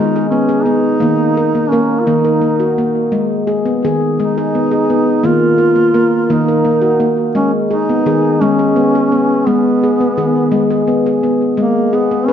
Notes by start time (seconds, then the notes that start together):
Already playing: G#3 D#4
0.16 G#4
0.29 B3 C#4
0.49 G#4
0.63 B3 D#4
1.00 D#3 A#3
1.37 A#4
1.55 A#3
1.70 A#3 C#4 A#4
2.00 F4
2.06 D#3 A#3 D#4
2.24 A#4
2.41 A#3
2.60 F#4
2.78 A#3
3.12 G#3
3.47 G#4
3.65 B3
3.85 D#3 G#4
4.20 G#3 D#4
4.38 G#4
4.55 B3
4.71 G#4
4.90 B3
5.23 D#3 A#3 F4
5.58 A#4
5.76 A#3
5.94 A#3 A#4
6.24 F4
6.30 D#3 A#3 D#4
6.48 A#4
6.65 A#3
6.82 F#4
7.00 A#3
7.35 G#3 C#4
7.71 D#4 G#4
7.89 B3
8.06 D#3 G#4
8.41 G#3 C#4
8.59 G#4
8.76 B3
8.95 G#4
9.12 B3
9.47 G#3 B3
9.84 G#4
10.00 B3
10.18 D#3 G#4
10.52 G#3
10.71 G#4
10.88 B3
11.06 G#4
11.23 B3
11.57 G#3 A#3
11.93 B3 G#4
12.11 B3
12.27 C#4 B4